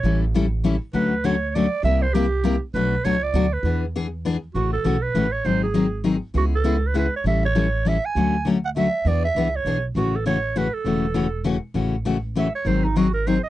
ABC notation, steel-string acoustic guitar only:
X:1
M:3/4
L:1/8
Q:"Swing" 1/4=200
K:A
V:1 name="Steel-string acoustic guitar"
[E,=G,CEA] z [E,G,CEA] z [E,G,CEA] z | [D,F,A,CF] z [D,F,A,CF] z [D,F,A,CF] z | [=C,=G,_B,E=G] z [C,G,B,EG] z [C,G,B,EG] z | [B,,F,A,DF] z [B,,F,A,DF] z [B,,F,A,DF] z |
[E,B,DG] z [E,B,DG] z [E,B,DG] z | [C,E,A,CF] z [C,E,A,CF] z [C,E,A,CF] z | [^D,F,^B,^DG] z [D,F,B,DG] z [D,F,B,DG] z | [C,G,B,EG] z [C,G,B,EG] z [C,G,B,EG] z |
[E,=G,CEA] z [E,G,CEA] z [E,G,CEA] z | [D,F,A,CF] z [D,F,A,CF] z [D,F,A,CF] z | [E,B,DG] z [E,B,DG] z [E,B,DG] z | [C,E,A,CF] z [C,E,A,CF] z [C,E,A,CF] z |
[C,E,A,CF] z [C,E,A,CF] z [C,E,A,CF] z | [C,E,A,CF] z [C,E,A,CF] z [C,E,A,CF] z | [^D,F,^B,^DG] z [D,F,B,DG] z [D,F,B,DG] z |]